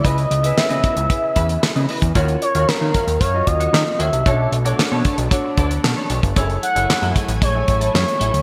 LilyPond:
<<
  \new Staff \with { instrumentName = "Analog synth lead" } { \time 4/4 \key ces \major \tempo 4 = 114 ees''4 fes''2~ fes''8 r8 | r8 des''8 bes'4 des''8 ees''4 fes''8~ | fes''8 r2. r8 | r8 ges''4 r8 des''4 des''4 | }
  \new Staff \with { instrumentName = "Clean electric guitar" } { \time 4/4 \key ces \major <fes' ces'' ees''>8 r16 <fes' ces'' fes''>16 r16 <fes' ces'' ees''>16 <fes' ces'' ees''>16 r8. <fes' ces'' fes''>16 r8 <fes' ces'' ees''>16 <fes' ces'' ees''>16 r16 | <ges' des'' f''>16 r8 <ges' des'' f''>16 r16 <ges' des'' f''>16 <ges' des'' f''>16 r16 <ges' des'' f''>16 r8 <ges' des'' ges''>16 r8 <ges' des'' f''>16 r16 | <d' a' cis''>8 r16 <d' a' d''>16 r16 <d' a' cis''>16 <d' a' cis''>16 r8. <d' a' d''>16 r8 <d' a' cis''>16 <d' a' cis''>16 r16 | <a fes' aes'>16 r8 <a fes' aes'>16 r16 <a fes' aes'>16 <a fes' aes'>16 r16 <a fes' aes'>16 r8 <a fes' a'>16 r8 <a fes' aes'>16 r16 | }
  \new Staff \with { instrumentName = "Grand piano" } { \time 4/4 \key ces \major << { r1 | r1 | r2. a''4 | r1 | } \\ { <fes' aes' ces'' ees''>8 r16 <fes' aes' ces'' fes''>4 r16 <fes' aes' ces'' fes''>4. r8 | <f' ges' bes' des''>8 r16 <f' ges' bes' des''>4~ <f' ges' bes' des''>16 r16 <f' ges' bes' ees''>4~ <f' ges' bes' ees''>16 r8 | <d' fis' a' cis''>8 r16 <d' fis' a' cis''>4 r16 <d' fis' a' cis''>4. r8 | <fes' aes' a' des''>8 r16 <fes' aes' a' des''>4~ <fes' aes' a' des''>16 r16 <fes' aes' a' des''>4~ <fes' aes' a' des''>16 r8 | } >> }
  \new Staff \with { instrumentName = "String machine" } { \time 4/4 \key ces \major <des ces' des' fes'>1 | <ees ges des' f''>1 | <a b d'>1 | <ges a fes' aes''>1 | }
  \new Staff \with { instrumentName = "Analog synth bass" } { \clef bass \time 4/4 \key ces \major des,8 des,8 des16 des16 r16 des,16 r8 fes,8 r16 des16 r16 fes,16 | ees,8 r16 ees,16 ees16 ees16 r16 ees,16 ges,8 ees,8 ees16 r16 ees,16 c,16 | b,,8 b,,8 b,16 b,16 r16 b,,16 r8 d,8 b,16 r16 b,,16 g,,16 | ges,,8 r16 ges,,16 ges,16 ges,16 r16 a,,16 bes,,8 a,,8 ges,16 r16 a,,16 d,16 | }
  \new DrumStaff \with { instrumentName = "Drums" } \drummode { \time 4/4 <hh bd>16 hh16 hh16 hh16 <hc sn>16 hh16 <hh bd>16 hh16 <hh bd>8 <hh bd>16 hh16 <hc sn>16 hh16 hho16 <hh bd>16 | <hh bd>16 hh16 hh16 hh16 <hc sn>8 <hh bd>16 hh16 <hh bd>8 <hh bd>16 hh16 <hc sn>8 hh16 hh16 | <hh bd>8 hh16 hh16 <hc sn>8 <hh bd>16 hh16 <hh bd>8 <hh bd>16 hh16 <hc sn>8 hh16 <hh bd>16 | <hh bd>16 hh16 hh16 hh16 <hc sn>16 hh16 <hh bd>16 hh16 <hh bd>8 <hh bd>16 hh16 <hc sn>16 hh16 hh16 hh16 | }
>>